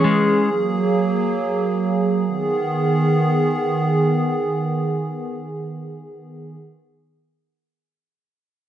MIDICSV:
0, 0, Header, 1, 3, 480
1, 0, Start_track
1, 0, Key_signature, 5, "minor"
1, 0, Tempo, 500000
1, 8339, End_track
2, 0, Start_track
2, 0, Title_t, "Clean electric guitar"
2, 0, Program_c, 0, 27
2, 0, Note_on_c, 0, 61, 81
2, 0, Note_on_c, 0, 73, 99
2, 41, Note_on_c, 0, 56, 87
2, 464, Note_off_c, 0, 61, 0
2, 467, Note_off_c, 0, 56, 0
2, 468, Note_off_c, 0, 73, 0
2, 8339, End_track
3, 0, Start_track
3, 0, Title_t, "Analog synth pad"
3, 0, Program_c, 1, 89
3, 0, Note_on_c, 1, 52, 82
3, 0, Note_on_c, 1, 61, 75
3, 0, Note_on_c, 1, 68, 94
3, 450, Note_off_c, 1, 52, 0
3, 450, Note_off_c, 1, 61, 0
3, 468, Note_on_c, 1, 54, 86
3, 468, Note_on_c, 1, 58, 78
3, 2139, Note_off_c, 1, 68, 0
3, 2157, Note_off_c, 1, 54, 0
3, 2157, Note_off_c, 1, 58, 0
3, 2174, Note_on_c, 1, 51, 82
3, 2174, Note_on_c, 1, 59, 76
3, 2174, Note_on_c, 1, 68, 93
3, 6295, Note_off_c, 1, 51, 0
3, 6295, Note_off_c, 1, 59, 0
3, 6295, Note_off_c, 1, 68, 0
3, 8339, End_track
0, 0, End_of_file